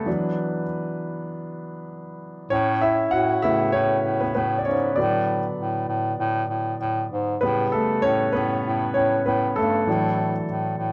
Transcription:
Already playing: B3 B4
0.06 E3 F#3 D4
2.50 A2 C#4 C#5
2.81 E4 E5
3.11 A2 F#4 F#5
3.42 A2 C#3 A3 B3 E4 E5
3.72 A2 C#4 C#5
4.04 A2
4.20 B3 B4
4.35 A2 B3 B4
4.58 D5
4.65 G#2 C#4 C#5
4.96 A2 D3 F#3 B3 D4 D5
5.58 A2
5.88 A2
6.19 A2
6.49 A2
6.80 A2
7.11 G#2
7.41 A2 C#3 G3 B3 B4
7.72 A3 A4
8.02 A2 C#4 C#5
8.33 A2 B3 B4
8.65 A2
8.94 A2 C#4 C#5
9.26 A2 B3 B4
9.56 G2 A3 A4
9.87 A2 E3 F#3 D4
10.48 A2
10.78 A2

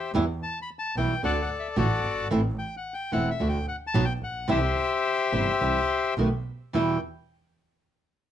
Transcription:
Already playing: G4 C5 E5
0.14 E2 B2 E3 G3 B3 E4
0.43 A5
0.62 B5
0.79 A5
0.95 B1 B2 E3 G3 B3 E4 G5
1.23 D2 D3 A3 D4 F#4 A4 D5 F#5
1.42 F#5
1.59 E5
1.76 A1 D3 A3 D4 F#4 A4 D5
2.05 G1
2.31 A1 E3 A3 C4 E4
2.59 G5
2.77 F#5
2.94 G5
3.12 E1 E3 A3 C4 E4 F#5
3.31 E5
3.40 D2 D3 A3 D4 F#4
3.49 G5
3.68 F#5
3.87 A5
3.94 B1 B2 F#3 B3 D#4 F#4
4.05 G5
4.23 A#1 F#5
4.48 C2 C3 E3 G3 C4 E4 G4 C5 E5
5.32 G1 C3 E3 G3 C4 E4
5.61 C2 C3 E3 G3 C4 E4
6.18 B1 B2 D#3 A3 B3 F#4
6.73 E2 B2 E3 G3 B3 E4 G5

